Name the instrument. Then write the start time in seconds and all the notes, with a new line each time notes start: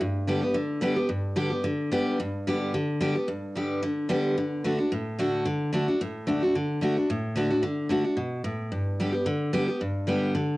steel-string acoustic guitar
0.01 G2
0.27 D3 G3 B3 G4
0.41 B3 G4
0.54 D3
0.81 D3 G3 B3 G4
0.96 B3 G4
1.09 G2
1.36 D3 G3 B3 G4
1.50 B3 G4
1.64 D3
1.91 D3 G3 B3 G4
2.20 G2
2.47 D3 G3 B3 G4
2.74 D3
3.01 D3 G3 B3 G4
3.15 B3 G4
3.28 G2
3.55 D3 G3 B3 G4
3.83 D3
4.09 D3 G3 B3 G4
4.38 D3
4.64 D3 A3 D4 F#4
4.78 D4 F#4
4.92 A2
5.19 D3 A3 D4 F#4
5.46 D3
5.73 D3 A3 D4 F#4
5.88 D4 F#4
6.01 A2
6.27 D3 A3 D4 F#4
6.43 D4 F#4
6.55 D3
6.81 D3 A3 D4 F#4
6.97 D4 F#4
7.10 A2
7.36 D3 A3 D4 F#4
7.51 D4 F#4
7.63 D3
7.89 D3 A3 D4 F#4
8.04 D4 F#4
8.17 B2
8.44 A2
8.72 G2
9.00 D3 G3 B3 G4
9.12 B3 G4
9.26 D3
9.53 D3 G3 B3 G4
9.68 B3 G4
9.81 G2
10.07 D3 G3 B3 G4
10.35 D3